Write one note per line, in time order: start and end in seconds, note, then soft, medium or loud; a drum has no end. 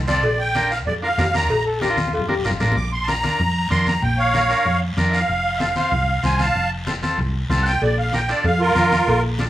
0.00 0.24 C2 medium
0.07 0.23 C4 medium
0.07 0.24 F4 medium
0.07 0.24 A4 medium
0.07 0.40 D5 medium
0.07 high conga medium
0.07 short guiro medium
0.23 0.86 A#1 loud
0.23 cowbell loud
0.23 high conga soft
0.23 long guiro medium
0.39 0.69 G5 medium
0.55 0.72 D4 medium
0.55 0.72 F4 medium
0.55 0.72 A#4 medium
0.55 high conga medium
0.55 short guiro medium
0.71 0.79 F5 medium
0.71 short guiro medium
0.86 1.12 F2 medium
0.86 0.94 D5 medium
0.86 cowbell medium
0.86 low conga medium
0.86 long guiro medium
1.02 1.08 D4 medium
1.02 1.08 F4 medium
1.02 1.09 A#4 medium
1.02 1.35 F5 medium
1.02 high conga soft
1.18 1.50 F2 medium
1.18 1.24 D4 medium
1.18 1.24 F4 medium
1.18 1.24 A#4 medium
1.18 high conga medium
1.18 low timbale medium
1.18 short guiro medium
1.34 1.51 D4 medium
1.34 1.51 F4 medium
1.34 1.51 A#4 medium
1.34 1.64 A#5 loud
1.34 high conga medium
1.34 short guiro medium
1.50 2.13 A#1 loud
1.50 cowbell loud
1.50 high conga soft
1.50 long guiro medium
1.66 1.83 A4 medium
1.81 1.98 D4 medium
1.81 1.98 F4 medium
1.81 1.90 G4 loud
1.81 1.99 A#4 medium
1.81 high conga medium
1.81 short guiro medium
1.90 2.12 F4 loud
1.97 high conga loud
1.97 short guiro medium
2.07 high conga medium
2.13 2.39 F2 loud
2.13 2.28 F4 medium
2.13 cowbell medium
2.13 long guiro medium
2.18 low conga medium
2.28 2.34 D4 medium
2.28 2.35 F4 medium
2.28 2.46 G4 medium
2.28 2.35 A#4 medium
2.28 high conga medium
2.39 low conga medium
2.44 2.59 G1 medium
2.44 2.50 D4 medium
2.44 2.50 F4 medium
2.44 2.77 F4 medium
2.44 2.51 A#4 medium
2.44 short guiro medium
2.50 low conga medium
2.60 2.75 A1 medium
2.60 2.76 D4 medium
2.60 2.76 F4 medium
2.60 2.77 A#4 medium
2.60 low conga medium
2.60 short guiro medium
2.72 low conga medium
2.76 3.27 A#1 loud
2.76 2.92 D6 medium
2.76 high conga soft
2.76 long guiro medium
2.92 3.08 C6 medium
3.03 3.06 A5 medium
3.08 3.13 D4 medium
3.08 3.14 F4 medium
3.08 3.14 A#4 medium
3.08 3.69 A#5 medium
3.08 high conga medium
3.08 short guiro medium
3.23 3.40 D4 medium
3.23 3.40 F4 medium
3.23 3.41 A#4 medium
3.23 high conga medium
3.23 short guiro medium
3.39 3.65 F2 medium
3.39 low conga medium
3.39 long guiro medium
3.56 high conga soft
3.70 3.96 F2 medium
3.70 3.93 D4 medium
3.70 3.93 F4 medium
3.70 3.93 A#4 medium
3.70 3.86 C6 medium
3.70 high conga medium
3.70 short guiro medium
3.87 4.03 A#5 medium
3.87 high conga medium
3.87 short guiro medium
4.02 4.53 A#1 loud
4.02 4.18 G5 medium
4.02 high conga soft
4.02 low conga medium
4.02 long guiro medium
4.18 4.77 C#5 medium
4.18 4.80 F5 medium
4.34 4.40 D4 medium
4.34 4.40 F4 medium
4.34 4.40 A#4 medium
4.34 high conga medium
4.34 short guiro medium
4.49 4.66 D4 medium
4.49 4.67 F4 medium
4.49 4.67 A#4 medium
4.49 short guiro medium
4.65 4.91 F2 medium
4.65 low conga medium
4.65 long guiro medium
4.82 high conga soft
4.97 5.22 F2 loud
4.97 5.20 D4 medium
4.97 5.20 F4 medium
4.97 5.20 A#4 medium
4.97 high conga medium
4.97 short guiro medium
5.10 5.12 E5 medium
5.10 5.60 F5 medium
5.10 short guiro medium
5.29 5.80 F1 loud
5.29 high conga soft
5.29 long guiro medium
5.58 5.66 C4 medium
5.58 5.66 F4 medium
5.58 5.66 A4 medium
5.58 5.60 E5 medium
5.58 high conga medium
5.58 short guiro medium
5.62 5.76 F5 medium
5.76 5.93 C4 medium
5.76 5.93 F4 medium
5.76 5.93 C5 medium
5.76 6.23 F5 medium
5.76 high conga medium
5.76 short guiro medium
5.92 6.17 C2 medium
5.92 low conga medium
5.92 long guiro medium
6.08 high conga soft
6.23 6.49 C2 loud
6.23 6.46 C4 medium
6.23 6.46 F4 medium
6.23 6.46 C5 medium
6.23 6.40 G#5 medium
6.23 high conga medium
6.23 short guiro medium
6.39 6.69 F5 medium
6.39 6.71 A5 medium
6.39 high conga medium
6.39 short guiro medium
6.55 7.06 F1 loud
6.55 high conga soft
6.55 long guiro medium
6.87 6.92 C4 medium
6.87 6.93 F4 medium
6.87 6.93 A4 medium
6.87 high conga medium
6.87 short guiro medium
7.03 7.19 C4 medium
7.03 7.19 F4 medium
7.03 7.20 A4 medium
7.03 high conga medium
7.03 short guiro medium
7.18 7.44 C2 medium
7.18 low conga medium
7.18 long guiro medium
7.33 high conga soft
7.50 7.75 C2 loud
7.50 7.72 C4 medium
7.50 7.72 F4 medium
7.50 7.72 A4 medium
7.50 high conga medium
7.50 low conga medium
7.50 short guiro medium
7.62 7.64 F#5 medium
7.66 7.82 G5 loud
7.66 short guiro medium
7.82 8.32 A#1 loud
7.82 7.97 D5 medium
7.82 cowbell loud
7.82 high conga soft
7.82 long guiro medium
7.99 8.13 F5 medium
8.13 8.19 D4 medium
8.13 8.19 F4 medium
8.13 8.19 A#4 medium
8.13 8.29 G5 medium
8.13 high conga medium
8.13 short guiro medium
8.29 8.46 D4 medium
8.29 8.46 F4 medium
8.29 8.46 A4 medium
8.29 8.45 D5 medium
8.29 short guiro medium
8.44 8.70 F2 medium
8.44 8.61 F5 medium
8.44 cowbell medium
8.44 low conga medium
8.44 long guiro medium
8.60 9.19 F4 medium
8.60 9.22 A#4 loud
8.60 high conga soft
8.75 9.01 F2 loud
8.75 8.98 D4 medium
8.75 8.99 F4 medium
8.75 8.99 A#4 medium
8.75 high conga medium
8.75 short guiro medium
8.92 high conga medium
8.92 short guiro medium
9.07 9.50 A#1 loud
9.07 cowbell loud
9.07 high conga soft
9.07 long guiro medium
9.39 9.45 D4 medium
9.39 9.45 F4 medium
9.39 9.45 A4 medium
9.39 high conga medium
9.39 short guiro medium